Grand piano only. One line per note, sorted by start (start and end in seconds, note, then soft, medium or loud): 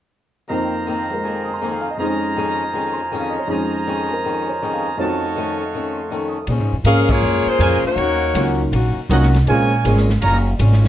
0.50 1.96 F2 medium
0.50 1.09 F3 soft
0.50 2.00 A#3 soft
0.50 2.00 D#4 soft
0.50 2.00 C5 medium
1.10 1.97 F3 soft
1.10 1.98 G#3 soft
1.10 2.00 C4 soft
1.10 2.00 A#4 soft
1.43 1.55 D#6 soft
1.54 1.66 C6 soft
1.63 1.79 A#5 soft
1.72 1.87 G#5 soft
1.82 1.93 F5 soft
1.91 2.03 D#5 medium
1.97 3.46 F2 soft
1.97 3.46 F3 soft
1.97 3.46 G#3 soft
1.97 3.46 C#4 soft
2.01 3.47 D#4 soft
2.01 3.47 C5 medium
2.93 3.05 C6 soft
3.03 3.15 A#5 soft
3.12 3.28 G#5 soft
3.20 3.36 F5 soft
3.30 3.42 D#5 medium
3.39 3.52 C#5 medium
3.47 4.96 F2 soft
3.47 4.08 F3 soft
3.47 4.98 G#3 soft
3.47 4.98 C#4 soft
3.47 4.97 D#4 soft
3.47 4.99 C5 medium
4.10 4.96 F3 soft
4.10 4.99 C4 soft
4.10 5.00 A#4 soft
4.49 4.68 C#5 soft
4.62 4.84 D#5 soft
4.74 4.93 F5 soft
4.86 5.05 G#5 soft
4.97 6.48 F2 medium
4.97 6.48 F3 soft
4.97 6.48 A3 soft
4.97 6.48 D#4 soft
4.97 6.48 F#4 soft
4.97 6.49 C#5 medium
6.85 7.42 F3 soft
6.85 7.43 G#3 soft
6.85 7.43 A#3 soft
6.85 7.43 C#4 medium
6.85 7.43 G#4 medium
8.35 8.92 F#3 medium
8.35 8.92 A#3 soft
8.35 8.92 C#4 soft
8.35 8.92 D#4 medium
8.35 8.93 F4 medium
9.11 9.32 F#3 medium
9.11 9.32 A#3 medium
9.11 9.32 C#4 medium
9.11 9.33 D#4 medium
9.11 9.33 F4 medium
9.48 9.69 G#3 medium
9.48 9.70 A#3 medium
9.48 9.70 C4 medium
9.48 9.70 C#4 medium
9.48 9.70 F4 medium
9.86 10.07 G#3 medium
9.86 10.07 A#3 soft
9.86 10.07 C4 soft
9.86 10.07 C#4 soft
9.86 10.08 G#4 soft